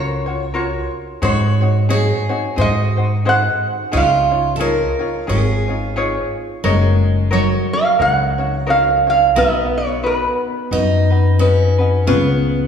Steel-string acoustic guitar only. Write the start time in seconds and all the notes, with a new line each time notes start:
1.23 F#4
1.90 G#4
2.58 F#4
3.93 F4
4.56 A4
4.61 A#4
5.29 G#4
6.64 G#3
7.33 F#3
9.36 B3
10.73 D#4
11.39 C#4
12.07 B3